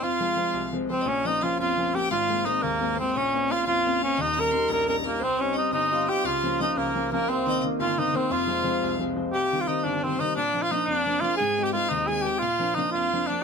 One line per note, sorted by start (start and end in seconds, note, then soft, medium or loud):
0.02 0.37 F2 medium
0.02 0.73 F4 medium
0.02 0.74 F5 medium
0.20 0.35 F3 soft
0.20 0.35 G#3 soft
0.20 0.36 C4 medium
0.37 0.65 F3 soft
0.37 0.66 G#3 soft
0.37 0.66 C4 soft
0.54 0.88 C2 medium
0.73 0.88 F3 soft
0.73 0.88 G#3 soft
0.73 0.89 C4 medium
0.89 1.03 F3 soft
0.89 1.03 G#3 soft
0.89 1.03 C4 medium
0.89 1.09 C4 medium
0.89 1.03 C5 medium
1.02 1.08 D#5 medium
1.06 2.06 A#1 medium
1.06 1.40 A#2 medium
1.06 1.28 C#4 medium
1.06 1.27 C#5 medium
1.25 1.41 F3 soft
1.25 1.42 A#3 soft
1.25 1.42 C#4 soft
1.25 1.45 D#4 medium
1.25 1.43 D#5 medium
1.42 1.70 F3 medium
1.42 1.71 A#3 soft
1.42 1.71 C#4 medium
1.42 1.59 F4 medium
1.42 1.58 F5 medium
1.59 1.93 F2 medium
1.59 1.96 F4 medium
1.59 1.92 F5 medium
1.77 1.92 F3 medium
1.77 1.93 A#3 soft
1.77 1.93 C#4 medium
1.94 2.07 F3 soft
1.94 2.07 A#3 soft
1.94 2.08 C#4 medium
1.94 2.10 G4 medium
1.94 2.12 G5 medium
2.11 3.10 G#1 medium
2.11 2.45 G#2 medium
2.11 2.47 F4 loud
2.11 2.47 F5 medium
2.30 2.45 G#3 soft
2.30 2.45 A#3 soft
2.30 2.46 C4 soft
2.45 2.74 G#3 medium
2.45 2.74 A#3 soft
2.45 2.75 C4 medium
2.45 2.64 D#4 medium
2.45 2.62 D#5 medium
2.61 2.97 D#2 medium
2.61 2.98 A#3 loud
2.61 2.97 A#4 medium
2.81 2.98 G#3 soft
2.81 2.98 A#3 soft
2.81 2.98 C4 medium
2.95 3.12 G#3 soft
2.95 3.19 C4 medium
2.95 3.12 C5 medium
3.00 3.12 A#3 soft
3.00 3.12 C4 soft
3.13 4.15 A#1 medium
3.13 3.49 A#2 medium
3.13 3.46 C#5 medium
3.17 3.53 C#4 medium
3.33 3.49 A#3 soft
3.33 3.49 C4 soft
3.33 3.49 C#4 soft
3.49 3.78 A#3 soft
3.49 3.78 C4 soft
3.49 3.78 C#4 medium
3.49 3.66 F4 medium
3.49 3.64 F5 medium
3.64 4.01 F2 medium
3.64 3.99 F4 loud
3.64 4.18 F5 medium
3.85 4.00 A#3 soft
3.85 4.00 C4 soft
3.85 4.00 C#4 medium
4.01 4.15 A#3 soft
4.01 4.15 C4 soft
4.01 4.15 C#4 medium
4.01 4.22 C#4 medium
4.17 5.18 D#1 medium
4.17 4.52 D#2 medium
4.17 4.35 D#5 medium
4.21 4.41 D#4 loud
4.34 4.51 G3 soft
4.34 4.51 C#4 soft
4.34 4.51 D#4 soft
4.34 4.53 A#5 medium
4.40 4.71 A#4 loud
4.52 4.81 G3 medium
4.52 4.81 C#4 soft
4.52 4.81 D#4 medium
4.52 4.70 C6 medium
4.68 5.04 A#1 medium
4.68 4.86 A#5 medium
4.73 4.88 A#4 medium
4.87 5.03 G3 soft
4.87 5.04 C#4 soft
4.87 5.04 D#4 medium
4.87 4.96 A#4 medium
4.87 5.05 A#5 medium
5.04 5.18 G3 soft
5.04 5.25 A#3 medium
5.04 5.18 C#4 soft
5.04 5.19 D#4 medium
5.04 5.21 A#4 medium
5.20 5.55 C2 medium
5.20 5.45 C4 medium
5.20 5.43 C4 medium
5.20 5.39 C5 medium
5.37 5.54 G3 soft
5.37 5.54 C4 soft
5.37 7.35 C#4 medium
5.37 5.57 C#4 medium
5.37 5.54 D#4 soft
5.37 5.55 C#5 medium
5.53 5.84 G3 soft
5.53 5.84 C4 soft
5.53 5.84 D#4 medium
5.53 5.73 D#4 medium
5.53 5.70 D#5 medium
5.58 5.73 D#4 medium
5.71 6.06 G1 medium
5.71 6.60 D#4 medium
5.71 6.10 D#4 loud
5.71 6.05 D#5 medium
5.91 6.07 G3 soft
5.91 6.07 C4 soft
5.91 6.08 D#4 medium
5.91 6.25 F4 medium
6.07 6.22 G3 soft
6.07 6.22 C4 soft
6.07 6.22 D#4 soft
6.07 9.22 G4 medium
6.07 6.27 G4 medium
6.07 6.27 G5 medium
6.24 6.58 C#2 medium
6.24 7.80 F4 medium
6.24 6.60 F4 loud
6.24 6.59 F5 medium
6.44 6.59 F3 soft
6.44 6.60 A#3 soft
6.44 6.60 C#4 medium
6.59 6.88 F3 medium
6.59 6.89 A#3 soft
6.59 6.89 C#4 medium
6.59 7.48 D#4 medium
6.59 6.79 D#4 medium
6.59 6.75 D#5 medium
6.76 7.10 C#2 medium
6.76 7.11 A#3 medium
6.76 7.09 A#4 medium
6.95 7.11 F3 medium
6.95 7.11 A#3 soft
6.95 7.11 C#4 soft
7.12 7.25 F3 soft
7.12 11.41 A#3 medium
7.12 7.30 A#3 medium
7.12 7.25 A#3 medium
7.12 7.25 C#4 medium
7.12 7.30 A#4 medium
7.28 7.62 C2 medium
7.28 7.63 C4 medium
7.28 8.14 C4 medium
7.28 7.47 C5 medium
7.46 7.62 D#3 soft
7.46 7.63 A#3 soft
7.46 7.63 C4 medium
7.46 7.98 D#4 medium
7.46 7.62 D#5 medium
7.64 7.91 D#3 soft
7.64 7.92 A#3 soft
7.64 7.92 C4 medium
7.80 8.14 G1 medium
7.80 8.30 F4 medium
7.80 8.01 F4 medium
7.80 7.97 F5 medium
7.98 8.11 D#3 soft
7.98 8.12 A#3 soft
7.98 8.13 C4 medium
7.98 11.59 D#4 medium
7.98 8.18 D#4 medium
7.98 8.16 D#5 medium
8.13 8.27 D#3 medium
8.13 8.27 A#3 soft
8.13 8.28 C4 soft
8.13 12.15 C4 medium
8.13 8.34 C4 medium
8.13 8.33 C5 medium
8.30 9.29 F1 medium
8.30 8.64 F2 medium
8.30 11.67 F4 medium
8.30 9.02 F4 medium
8.30 9.01 F5 medium
8.47 8.63 F3 soft
8.47 8.63 G#3 soft
8.47 8.64 C4 medium
8.64 8.93 F3 medium
8.64 8.93 G#3 medium
8.64 8.93 C4 medium
8.82 9.16 C2 medium
8.99 9.15 F3 soft
8.99 9.15 G#3 soft
8.99 9.15 C4 medium
9.16 9.30 F3 soft
9.16 9.30 G#3 soft
9.16 9.30 C4 medium
9.33 9.68 C2 medium
9.33 9.62 G4 loud
9.33 9.70 G5 medium
9.53 9.67 D#3 soft
9.53 9.67 G3 soft
9.53 9.67 C4 soft
9.60 9.69 F4 medium
9.68 9.97 D#3 soft
9.68 9.97 G3 soft
9.68 9.97 C4 medium
9.68 9.85 D#4 medium
9.68 9.87 D#5 medium
9.84 10.19 G1 medium
9.84 10.05 D4 medium
9.84 10.04 D5 medium
10.03 10.19 D#3 medium
10.03 10.19 G3 soft
10.03 10.21 C4 medium
10.03 10.19 C4 medium
10.03 10.22 C5 medium
10.19 10.34 D#3 soft
10.19 10.34 G3 soft
10.19 10.34 C4 medium
10.19 10.35 D#4 medium
10.19 10.35 D#5 medium
10.36 10.71 A#2 medium
10.36 10.64 D4 medium
10.36 10.61 D5 medium
10.54 10.70 F3 soft
10.54 10.70 A#3 soft
10.54 10.71 D4 soft
10.62 10.73 F4 medium
10.62 10.74 F5 medium
10.71 11.00 F3 medium
10.71 11.00 A#3 soft
10.71 11.00 D4 medium
10.71 10.87 D#4 medium
10.71 10.89 D#5 medium
10.86 11.22 F2 medium
10.86 11.22 D4 loud
10.86 11.26 D5 medium
11.06 11.20 F3 soft
11.06 11.21 A#3 soft
11.06 11.21 D4 medium
11.21 11.36 F3 soft
11.21 11.36 A#3 soft
11.21 11.36 D4 soft
11.21 11.36 F4 medium
11.21 11.41 F5 medium
11.37 11.74 G#2 medium
11.37 11.65 G#4 loud
11.37 11.64 G#5 medium
11.59 11.73 G#3 soft
11.59 11.73 C4 soft
11.59 11.74 D#4 soft
11.63 11.72 G4 loud
11.63 11.72 G5 medium
11.73 12.03 G#3 medium
11.73 12.03 C4 medium
11.73 12.03 D#4 medium
11.73 11.91 F4 medium
11.73 11.92 F5 medium
11.89 12.25 D#2 medium
11.89 12.09 D#4 loud
11.89 12.09 D#5 medium
12.07 12.24 G#3 soft
12.07 12.24 C4 soft
12.07 12.24 D#4 soft
12.07 12.24 G#4 medium
12.07 12.28 G#5 medium
12.22 12.39 G#3 soft
12.22 12.39 C4 soft
12.22 12.39 D#4 soft
12.22 12.40 G4 medium
12.26 12.43 G5 medium
12.39 12.76 A#2 medium
12.39 12.76 F4 medium
12.39 12.80 F5 medium
12.59 12.76 F3 soft
12.59 12.76 A#3 soft
12.59 12.76 D4 soft
12.75 13.05 F3 medium
12.75 13.05 A#3 soft
12.75 13.06 D4 medium
12.75 12.91 D#4 medium
12.75 12.97 D#5 medium
12.91 13.28 F2 medium
12.91 13.28 F4 loud
12.96 13.31 F5 medium
13.13 13.29 F3 soft
13.13 13.28 A#3 soft
13.13 13.29 D4 medium
13.27 13.43 F3 soft
13.27 13.43 A#3 soft
13.27 13.44 D4 medium
13.27 13.43 D4 soft
13.27 13.44 D5 medium